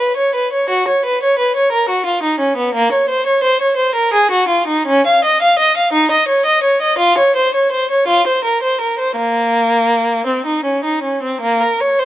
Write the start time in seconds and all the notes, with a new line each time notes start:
0.00 B4
0.17 C#5
0.35 B4
0.53 C#5
0.69 F#4
0.88 C#5
1.05 B4
1.23 C#5
1.38 B4
1.56 C#5
1.72 A#4
1.89 F#4
2.06 F4
2.23 D#4
2.39 C#4
2.57 B3
2.74 A#3
2.92 C#5
3.09 C5
3.26 C#5
3.43 C5
3.61 C#5
3.76 C5
3.95 A#4
4.13 G#4
4.31 F#4
4.48 F4
4.67 D#4
4.86 C#4
5.06 F5
5.24 D#5
5.42 F5
5.59 D#5
5.77 F5
5.93 D#4
6.11 D#5
6.28 C#5
6.45 D#5
6.63 C#5
6.82 D#5
6.98 F4
7.18 C#5
7.36 C5
7.54 C#5
7.72 C5
7.91 C#5
8.07 F4
8.27 C5
8.44 A#4
8.62 C5
8.81 A#4
8.99 C5
9.16 A#3
10.26 C4
10.46 D#4
10.64 C#4
10.84 D#4
11.03 C#4
11.23 C4
11.41 A#3
11.61 A#4
11.81 C#5
11.99 C5